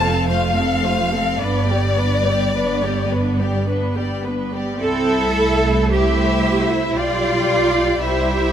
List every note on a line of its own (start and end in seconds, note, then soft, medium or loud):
0.00 1.37 F1 medium
0.00 1.37 F2 medium
0.00 0.29 C4 soft
0.00 0.30 A4 soft
0.00 0.30 F5 soft
0.00 0.30 A5 medium
0.29 0.54 A3 soft
0.29 0.54 F4 soft
0.29 0.55 C5 soft
0.29 1.39 F5 medium
0.56 0.84 C4 soft
0.56 0.84 A4 soft
0.56 0.84 F5 soft
0.84 1.12 A3 soft
0.84 1.12 F4 soft
0.84 1.12 C5 soft
1.12 1.41 C4 soft
1.12 1.41 A4 soft
1.12 1.41 F5 soft
1.40 4.60 G1 medium
1.40 4.60 G2 medium
1.40 1.67 B3 soft
1.40 1.67 D4 soft
1.40 1.68 B4 soft
1.40 3.67 D5 medium
1.69 1.98 G3 soft
1.69 1.96 B3 soft
1.69 1.98 G4 soft
1.69 1.98 D5 soft
1.98 2.25 B3 soft
1.98 2.26 D4 soft
1.98 2.26 B4 soft
2.26 2.55 G3 soft
2.26 2.54 B3 soft
2.26 2.55 G4 soft
2.26 2.55 D5 soft
2.54 2.81 B3 soft
2.54 2.81 D4 soft
2.54 2.81 B4 soft
2.82 3.11 G3 soft
2.82 3.10 B3 soft
2.82 3.11 G4 soft
2.82 3.11 D5 soft
3.11 3.38 B3 soft
3.11 3.39 D4 soft
3.11 3.40 B4 soft
3.39 3.67 G3 soft
3.39 3.66 B3 soft
3.39 3.67 G4 soft
3.39 3.67 D5 soft
3.67 3.94 B3 soft
3.67 3.94 D4 soft
3.67 3.94 B4 soft
3.95 4.24 G3 soft
3.95 4.23 B3 soft
3.95 4.24 G4 soft
3.95 4.24 D5 soft
4.24 4.51 B3 soft
4.24 4.53 D4 soft
4.24 4.53 B4 soft
4.52 4.81 G3 soft
4.52 4.81 B3 soft
4.52 4.82 G4 soft
4.52 4.82 D5 soft
4.80 6.92 C2 medium
4.80 5.32 C4 medium
4.80 5.86 E4 medium
4.80 5.87 A4 medium
4.80 5.87 E5 medium
5.36 6.97 A3 medium
5.90 6.94 E4 medium
5.90 6.71 G4 medium
5.90 6.97 C5 medium
5.90 6.92 E5 medium
6.71 6.97 E4 medium
6.96 8.02 B1 medium
6.96 8.01 G3 medium
6.96 8.03 F4 medium
6.96 8.00 G4 medium
6.96 8.02 D5 medium
6.96 7.48 D5 medium
7.49 8.01 D5 medium
8.02 8.53 C2 medium
8.02 8.53 G3 medium
8.02 8.53 E4 medium
8.02 8.53 G4 medium
8.02 8.53 C5 medium
8.02 8.53 E5 medium